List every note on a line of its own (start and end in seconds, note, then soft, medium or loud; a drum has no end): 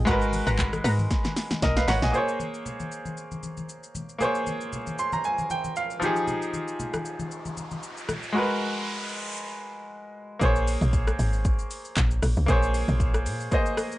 0.05 0.42 G#1 loud
0.05 2.09 G#3 medium
0.05 2.10 F#4 medium
0.05 1.60 A#4 medium
0.05 0.43 B4 medium
0.05 0.44 F#5 medium
0.05 0.44 A#5 loud
0.05 kick loud
0.05 low conga medium
0.05 shaker medium
0.11 1.61 B4 loud
0.21 shaker medium
0.33 open hi-hat medium
0.33 high conga medium
0.33 shaker medium
0.47 0.80 G#1 loud
0.47 0.60 B4 medium
0.47 0.60 F#5 medium
0.47 0.60 A#5 medium
0.47 shaker medium
0.59 kick medium
0.59 clap loud
0.59 low conga medium
0.59 shaker medium
0.73 cross-stick medium
0.73 high conga medium
0.73 shaker medium
0.84 1.07 G#2 loud
0.84 0.99 B4 medium
0.84 1.00 F#5 medium
0.84 1.00 A#5 medium
0.84 open hi-hat medium
0.84 shaker medium
0.98 high conga medium
0.98 shaker medium
1.11 kick loud
1.11 snare medium
1.11 shaker medium
1.25 snare medium
1.25 high conga medium
1.25 shaker soft
1.36 snare medium
1.36 open hi-hat soft
1.36 shaker medium
1.51 snare medium
1.51 high conga medium
1.51 shaker medium
1.62 1.85 B1 loud
1.62 1.76 A#4 medium
1.62 1.76 D#5 medium
1.62 kick medium
1.62 snare medium
1.62 shaker medium
1.77 1.88 B4 medium
1.77 1.88 F5 medium
1.77 snare medium
1.77 shaker medium
1.88 2.01 G#1 loud
1.88 2.03 B4 medium
1.88 2.02 C#5 medium
1.88 2.03 F#5 medium
1.88 2.02 F#5 medium
1.88 2.03 A#5 medium
1.88 snare loud
1.88 open hi-hat medium
1.88 high conga medium
1.88 low conga medium
1.88 shaker medium
2.02 2.12 A#1 loud
2.02 2.27 D#5 medium
2.02 2.27 G#5 medium
2.02 snare loud
2.02 shaker soft
2.11 4.16 A#3 medium
2.11 4.16 G#4 medium
2.11 4.18 C5 medium
2.11 low conga medium
2.11 shaker medium
2.17 4.18 C#5 medium
2.28 shaker medium
2.40 high conga medium
2.40 shaker medium
2.54 shaker soft
2.66 low conga medium
2.66 shaker medium
2.80 high conga medium
2.80 shaker medium
2.92 shaker medium
3.05 high conga medium
3.05 shaker soft
3.17 shaker medium
3.31 high conga medium
3.31 shaker soft
3.43 high conga medium
3.43 shaker medium
3.57 high conga medium
3.57 shaker soft
3.69 shaker medium
3.83 shaker medium
3.95 high conga medium
3.95 low conga medium
3.95 shaker medium
4.09 shaker soft
4.18 5.97 A#3 medium
4.18 5.98 G#4 medium
4.18 5.99 C5 medium
4.18 low conga medium
4.18 shaker medium
4.24 6.00 C#5 medium
4.35 shaker medium
4.47 high conga medium
4.47 shaker medium
4.61 shaker medium
4.73 low conga medium
4.73 shaker medium
4.87 high conga medium
4.87 shaker medium
4.98 5.12 C6 medium
4.98 shaker medium
5.12 5.24 A#5 medium
5.12 high conga medium
5.12 shaker soft
5.24 5.49 G#5 medium
5.24 shaker medium
5.38 high conga medium
5.38 shaker soft
5.50 5.74 G5 medium
5.50 high conga medium
5.50 shaker medium
5.64 high conga medium
5.64 shaker soft
5.76 6.24 F5 medium
5.76 shaker medium
5.90 shaker medium
6.00 8.04 F3 medium
6.00 8.05 D#4 medium
6.00 8.06 G4 medium
6.00 high conga medium
6.00 low conga medium
6.00 shaker medium
6.05 8.06 G#4 medium
6.16 shaker soft
6.27 riser medium
6.27 low conga medium
6.27 shaker medium
6.42 shaker medium
6.53 high conga medium
6.53 shaker medium
6.68 shaker medium
6.80 low conga medium
6.80 shaker medium
6.94 cross-stick medium
6.94 high conga medium
6.94 shaker medium
7.05 shaker medium
7.19 high conga medium
7.19 shaker soft
7.31 shaker medium
7.45 high conga medium
7.45 shaker soft
7.57 high conga medium
7.57 shaker medium
7.71 high conga medium
7.71 shaker soft
7.83 shaker medium
7.97 shaker medium
8.09 cross-stick medium
8.09 high conga medium
8.09 low conga medium
8.09 shaker medium
8.23 shaker soft
8.32 10.36 G#3 medium
8.32 10.37 F#4 medium
8.32 10.38 A#4 medium
8.38 10.39 B4 medium
10.39 10.77 A#1 loud
10.39 12.43 A#3 medium
10.39 12.44 G#4 medium
10.39 12.45 C5 medium
10.39 kick loud
10.39 shaker medium
10.45 12.46 C#5 medium
10.56 shaker medium
10.68 open hi-hat medium
10.68 shaker loud
10.81 11.15 A#1 loud
10.81 mid tom loud
10.81 shaker medium
10.93 kick medium
10.93 shaker medium
11.07 cross-stick medium
11.07 shaker medium
11.19 11.65 G#1 loud
11.19 open hi-hat medium
11.19 shaker medium
11.33 shaker medium
11.45 kick loud
11.45 shaker medium
11.59 shaker medium
11.71 open hi-hat medium
11.71 shaker medium
11.85 shaker medium
11.97 12.20 A#1 loud
11.97 kick medium
11.97 clap medium
11.97 shaker medium
12.11 shaker medium
12.22 12.35 A#1 medium
12.22 cross-stick medium
12.22 open hi-hat medium
12.22 shaker medium
12.37 12.47 C#2 medium
12.37 shaker medium
12.46 12.84 A#1 loud
12.46 13.49 A#3 medium
12.46 13.50 G#4 medium
12.46 13.51 C5 medium
12.46 kick loud
12.46 shaker medium
12.52 13.52 C#5 medium
12.63 shaker medium
12.74 open hi-hat medium
12.74 shaker medium
12.88 13.28 A#1 loud
12.88 mid tom loud
12.88 shaker medium
13.00 kick medium
13.00 shaker medium
13.14 cross-stick medium
13.14 shaker medium
13.26 13.49 A#2 loud
13.26 open hi-hat medium
13.26 shaker medium
13.40 shaker medium
13.51 13.98 A#3 medium
13.51 13.98 G#4 medium
13.51 13.98 C5 medium
13.51 13.98 D#5 medium
13.51 kick loud
13.51 shaker medium
13.66 shaker medium
13.77 cross-stick loud
13.77 open hi-hat soft
13.77 shaker medium
13.92 shaker medium